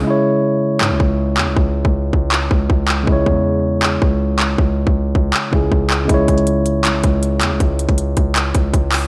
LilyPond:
<<
  \new Staff \with { instrumentName = "Tine electric piano" } { \time 4/4 \key cis \minor \tempo 4 = 159 <cis gis e' cis''>1~ | <cis gis e' cis''>1 | <cis gis e' cis''>1~ | <cis gis e' cis''>2~ <cis gis e' cis''>8 <cis gis e' gis'>4. |
<cis gis e' cis''>1~ | <cis gis e' cis''>1 | }
  \new Staff \with { instrumentName = "808-style bass" } { \clef bass \time 4/4 \key cis \minor r2 gis,16 cis,16 cis,4 e,16 cis,16 | cis,8. cis,8. cis,4 cis,8 cis,4 | cis,8 e,2 cis,4. | cis,8. cis,8. cis,8 r8 cis,8 cis,4 |
cis,8 cis,4. bis,,16 cis,16 cis,4 e,16 cis,16 | cis,8. cis,8. cis,4 cis,8 cis,4 | }
  \new DrumStaff \with { instrumentName = "Drums" } \drummode { \time 4/4 r4 r4 hc8 bd8 r8 hc8 | bd8. bd16 r8 bd8 hc8 bd8 bd8 hc8 | bd8 bd8 r4 hc8 bd8 r8 hc8 | bd8. bd16 r8 bd8 hc8 bd8 bd8 hc8 |
<hh bd>8 <hh bd>16 hh16 hh8 hh8 <hc hh>8 <hh bd>8 hh8 <hc hh>8 | <hh bd>8 hh16 <hh bd>16 hh8 <hh bd>8 <hc hh>8 <hh bd>8 <hh bd>8 <hc hho>8 | }
>>